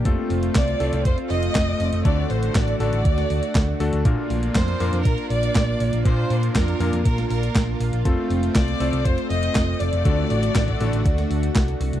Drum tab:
HH |x-oxxxoxxxoxx-ox|x-oxxxoxxxoxx-ox|x-oxxxoxxxoxx-ox|x-oxxxoxxxoxx-ox|
CP |----x-------x---|----x-------x---|----x-------x---|----x-------x---|
SD |----o-------o---|----o----o--o---|----o-------o---|----o----o--o---|
BD |o---o---o---o---|o---o---o---o---|o---o---o---o---|o---o---o---o---|

HH |x-oxxxoxxxoxx-ox|x-oxxxoxxxoxxxox|
CP |----x-------x---|----x-------x---|
SD |----o-------o---|----o----o--o---|
BD |o---o---o---o---|o---oo--o---o---|